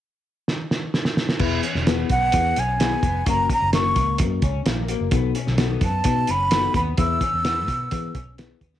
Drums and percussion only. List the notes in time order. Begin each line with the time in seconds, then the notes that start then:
0.48 snare
0.71 snare
0.94 snare
1.05 snare
1.17 snare
1.29 snare
1.39 kick, crash
1.63 closed hi-hat
1.75 snare
1.87 snare, closed hi-hat
2.10 kick, closed hi-hat
2.32 kick, closed hi-hat
2.56 closed hi-hat
2.80 snare, closed hi-hat
3.03 kick, closed hi-hat
3.26 kick, closed hi-hat
3.50 kick, closed hi-hat
3.73 snare, closed hi-hat
3.96 kick, closed hi-hat
4.18 kick, closed hi-hat
4.42 kick, closed hi-hat
4.66 snare, closed hi-hat
4.88 closed hi-hat
5.11 kick, closed hi-hat
5.35 closed hi-hat
5.47 snare
5.58 snare, closed hi-hat
5.81 kick, closed hi-hat
6.04 kick, closed hi-hat
6.27 closed hi-hat
6.51 snare, closed hi-hat
6.74 kick, closed hi-hat
6.97 kick, closed hi-hat
7.21 kick, closed hi-hat
7.45 snare, closed hi-hat
7.68 kick, closed hi-hat
7.91 kick, closed hi-hat
8.15 kick, closed hi-hat
8.38 snare, closed hi-hat
8.61 kick, closed hi-hat
8.74 snare